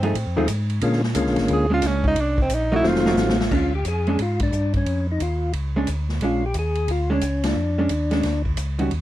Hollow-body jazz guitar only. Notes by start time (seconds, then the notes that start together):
0.03 F3 A3 D#4 G#4
0.37 F3 A3 D#4 G#4
1.70 G#3 C#4 D4
2.72 F3 A3 D#4 F#4
3.06 F3 A3 D#4 F#4
3.51 G#3 C#4 D4
4.07 G#3 C#4 D4
5.76 G#3 C#4 D4
6.22 G#3 C#4 D4
7.10 G#3 C#4 D4
7.78 G#3 C#4 D4
8.11 G#3 C#4 D4
8.79 D#3 G3 C#4 F#4